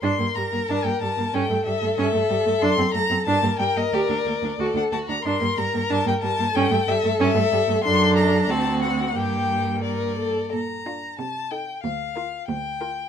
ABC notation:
X:1
M:2/4
L:1/16
Q:1/4=92
K:Gm
V:1 name="Violin"
c'2 b2 a g a2 | g2 =e2 e4 | c'2 b2 a2 g e | d4- d ^f a b |
c'2 b2 a g a2 | g2 =e2 e4 | c'2 b2 a2 ^f2 | g4 d4 |
[K:Bb] b4 a2 g2 | f4 g4 |]
V:2 name="Violin"
B8 | A8- | A4 B4- | B4 A2 ^F2 |
B8 | A8 | A4 ^F4 | G4 B2 A2 |
[K:Bb] z2 F2 z2 A2 | z2 B2 z2 B2 |]
V:3 name="Viola"
D B, G, B, D B, G, B, | ^C A, G, A, C A, G, A, | D C A, C D B, G, B, | G D B, D ^F D A, D |
D B, G, B, D B, G, B, | ^C A, G, A, C A, G, A, | D4 C4 | B,6- B, z |
[K:Bb] z2 D2 z2 E2 | z2 F2 z2 F2 |]
V:4 name="Cello" clef=bass
G,, G,, G,, G,, G,, G,, G,, G,, | G,, G,, G,, G,, G,, G,, G,, G,, | ^F,, F,, F,, F,, G,, G,, G,, G,, | D,, D,, D,, D,, D,, D,, D,, D,, |
G,, G,, G,, G,, G,, G,, G,, G,, | G,, G,, G,, G,, G,, G,, G,, G,, | ^F,,4 D,,4 | G,,6- G,, z |
[K:Bb] B,,3 z C,3 z | D,,3 z D,,3 z |]